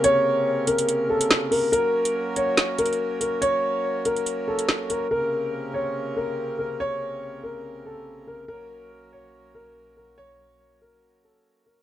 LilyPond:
<<
  \new Staff \with { instrumentName = "Grand piano" } { \time 4/4 \key ges \lydian \tempo 4 = 142 des''4. bes'4 a'4 bes'8 | bes'4. des''4 bes'4 bes'8 | des''4. bes'4 a'4 bes'8 | bes'4. des''4 bes'4 bes'8 |
des''4. bes'4 a'4 bes'8 | bes'4. des''4 bes'4 bes'8 | des''4. bes'4 a'4 bes'8 | }
  \new Staff \with { instrumentName = "Harmonium" } { \clef bass \time 4/4 \key ges \lydian << { bes1~ | bes1~ | bes1 | bes1~ |
bes1 | bes1~ | bes1 | } \\ { <c des>1 | <ges des'>1~ | <ges des'>1 | <c des>1~ |
<c des>1 | <ges des'>1~ | <ges des'>1 | } >> }
  \new DrumStaff \with { instrumentName = "Drums" } \drummode { \time 4/4 hh4 r8 hh16 hh16 hh8. hh16 sn8 hho8 | hh8. hh16 r8 hh8 \tuplet 3/2 { <hh sn>16 r16 r16 hh16 hh16 hh16 } r8 hh8 | hh4 r8 hh16 hh16 hh8. hh16 sn8 hh8 | r4 r4 r4 r4 |
r4 r4 r4 r4 | r4 r4 r4 r4 | r4 r4 r4 r4 | }
>>